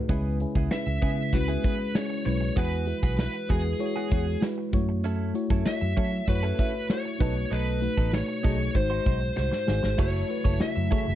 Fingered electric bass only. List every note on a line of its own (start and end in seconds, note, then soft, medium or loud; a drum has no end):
0.09 0.44 C#2 medium
0.55 0.67 C#2 medium
0.87 0.98 C#2 medium
1.03 1.34 C#3 medium
1.33 1.56 C#2 medium
2.26 2.49 B1 medium
2.57 2.92 E2 medium
3.03 3.26 B1 medium
3.50 3.73 E2 medium
4.12 4.35 E2 medium
4.73 5.31 F#2 loud
5.50 5.62 F#2 medium
5.82 5.93 F#2 medium
5.97 6.20 F#3 medium
6.28 6.51 F#2 medium
7.21 7.44 B1 medium
7.52 7.86 B1 medium
7.98 8.21 A1 medium
8.45 8.68 B1 medium
8.75 8.98 G#1 medium
9.07 9.30 B1 medium
9.38 9.49 C2 medium
9.69 9.80 G#1 medium
9.84 9.96 G#1 medium
9.99 10.22 F#1 medium
10.45 10.57 F#1 medium
10.62 muted fingered electric bass stroke soft
10.77 10.88 F#2 medium
11.08 11.15 F#1 medium